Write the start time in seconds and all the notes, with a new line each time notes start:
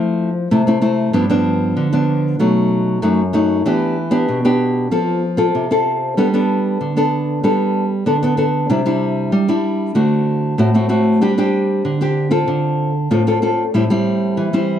Already playing: F3 A3 C4 E4
0.51 C3 A3 C4 E4
0.67 A3 C4 E4
0.82 A3 C4 E4
1.13 G2 F3 B3 D4
1.30 F3 B3 D4
1.77 D3
1.93 F3 B3 D4
2.39 B2 F#3 A3 D#4
3.02 F#2 F#3 A3 D#4
3.33 F#3 A3 D#4
3.66 E3 B3 D4 G4
4.11 B3 D4 G4
4.28 B2
4.45 B3 D4 G4
4.91 F3 C4 F4 A4
5.37 C4 F4 A4
5.55 C3
5.71 C4 F4 A4
6.17 G3 B3 D4 A4
6.34 B3 D4 A4
6.81 D3
6.97 B3 D4 A4
7.44 G3 B3 D4 A4
8.06 D3 B3 D4 A4
8.23 B3 D4 A4
8.37 B3 D4 A4
8.70 C3 G3 D4 E4
8.86 G3 D4 E4
9.32 G3
9.48 G3 D4 E4
9.95 D3 A3 C4 F#4
10.58 A2 A3 C4 F#4
10.74 A3 C4 F#4
10.89 A3 C4 F#4
11.21 G3 C4 D4 G4
11.38 C4 D4 G4
11.85 D3
12.01 C4 D4 G4
12.31 C4 F4 A4
12.48 D3
13.11 A2 C4 F4 A4
13.27 C4 F4 A4
13.42 C4 F4 A4
13.74 A2 G3 C4 E4
13.90 G3 C4 E4
14.37 E3
14.53 G3 C4 E4